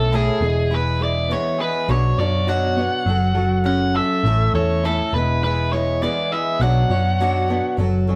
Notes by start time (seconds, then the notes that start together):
Already playing: B1 A2 C#4 E4 A4
0.12 A2 A3 C#4 E4 G#4 A4
0.41 E1 E2 B3 E4 G#4
0.45 G#3
0.71 G#3 B3 E4 G#4 B4
1.01 G#3 B3 E4 G#4 D5
1.31 E2 E3 G#3 B3 E4 G#4 C#5
1.60 G#3 B3 E4 G#4 B4
1.88 B1 B2 F#3 B3 D4 F#4 C#5
2.18 F#2 B3 D4 F#4 C#5 D5
2.47 B2 F#3 B3 D4 F#4 C#5 F#5
2.76 B3 D4 F#4 C#5
2.81 B3
3.06 F#1 F#3 C#4 F#4 A4
3.34 F#3 C#4 F#4 A4
3.64 F#3 C#4 F#4 A4 F#5
3.95 C#4 F#4 A4 E5
4.24 A1 A2 A3 C#4 E4 A4
4.54 E2 C#4 E4 A4 C#5
4.85 A2 A3 C#4 E4 A4
5.13 E1 E2 B3 E4 G#4 B4
5.17 G#3
5.43 G#3 B3 E4 G#4 B4
5.73 G#3 B3 E4 G#4 C#5
6.02 E2 E3 G#3 B3 E4 G#4 D5
6.32 G#3 B3 E4 G#4 E5
6.60 B1 B2 F#3 B3 D4 F#4 C#5 F#5
6.90 F#2 B3 D4 F#4 C#5
7.20 B2 F#3 B3 D4 F#4 C#5
7.48 B3 D4 F#4 C#5
7.77 F#1 F#3 C#4 F#4 A4
8.07 F#3 C#4 F#4 A4